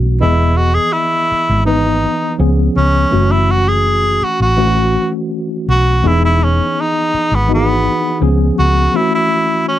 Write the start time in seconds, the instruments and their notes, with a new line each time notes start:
Already playing: fingered electric bass B1, tine electric piano E3 A3 C#4 F#4
0.20 fingered electric bass E1, tine electric piano E3 B3 G#4 D#5, tenor saxophone E4
0.57 tenor saxophone F#4
0.75 tenor saxophone G#4
0.93 tenor saxophone E4
1.32 muted fingered electric bass stroke
1.49 fingered electric bass G#1
1.65 tine electric piano E3 B3 D#4 B4, tenor saxophone D#4
2.39 fingered electric bass C#2, tine electric piano F3 B3 C#4 G#4
2.76 fingered electric bass C#2, tenor saxophone C#4
3.11 fingered electric bass F#1, tine electric piano E3 A3 C#4 F#4
3.32 tenor saxophone E4
3.51 tenor saxophone F#4
3.68 tenor saxophone G#4
4.22 tenor saxophone F#4, muted fingered electric bass stroke
4.40 fingered electric bass A1, tenor saxophone F#4
4.57 tine electric piano E3 A3 C#4 F#4
5.68 fingered electric bass B1, tenor saxophone F#4
6.03 fingered electric bass E1, tine electric piano E3 B3 D#4 G#4
6.07 tenor saxophone E4
6.25 tenor saxophone E4
6.44 tenor saxophone C#4
6.81 tenor saxophone D#4
7.14 muted fingered electric bass stroke
7.31 fingered electric bass G#1, tenor saxophone B3
7.48 tine electric piano E3 B3 D#4 F#4
7.54 tenor saxophone B3, tine electric piano G#4
8.21 fingered electric bass C#2, tine electric piano F3 B3 C#4 G#4
8.59 fingered electric bass C#2, tenor saxophone F#4
8.94 tine electric piano E3 A3 C#4 F#4, tenor saxophone E4
9.15 tenor saxophone E4
9.69 tenor saxophone C#4